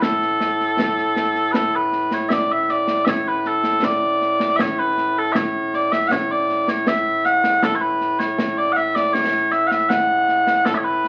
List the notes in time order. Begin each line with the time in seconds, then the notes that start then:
Already playing: A2
0.02 A4, concert bass drum, snare
0.22 snare
0.41 snare
0.60 snare
0.79 concert bass drum, snare
0.98 snare
1.16 snare
1.35 snare
1.52 A4 B4, concert bass drum, snare
1.75 B4
1.92 snare
2.11 C#5, snare
2.29 E5, concert bass drum, snare
2.33 D5
2.52 E5
2.62 E5
2.69 D5, snare
2.87 snare
3.05 C#5 E5, concert bass drum, snare
3.28 B4
3.39 B4
3.45 A4, snare
3.63 snare
3.83 D5, concert bass drum, snare
4.21 snare
4.40 snare
4.56 E5, concert bass drum, snare
4.61 C#5
4.79 B4
4.97 snare
5.18 A4
5.32 C#5 E5, concert bass drum, snare
5.74 D5, snare
5.92 E5, snare
6.08 F#5, concert bass drum, snare
6.12 C#5
6.31 D5
6.49 snare
6.68 C#5, snare
6.87 E5, concert bass drum, snare
7.25 F#5, snare
7.44 snare
7.62 A4, concert bass drum, snare
7.75 C#5
7.81 B4
8.01 snare
8.19 C#5, snare
8.39 concert bass drum, snare
8.58 D5
8.72 F#5
8.76 E5, snare
8.95 D5, snare
9.13 C#5, concert bass drum, snare
9.52 E5, snare
9.67 E5 F#5
9.71 snare
9.89 F#5, concert bass drum, snare
10.28 snare
10.47 snare
10.65 A4, concert bass drum, snare
10.74 C#5 E5
10.84 B4
11.04 snare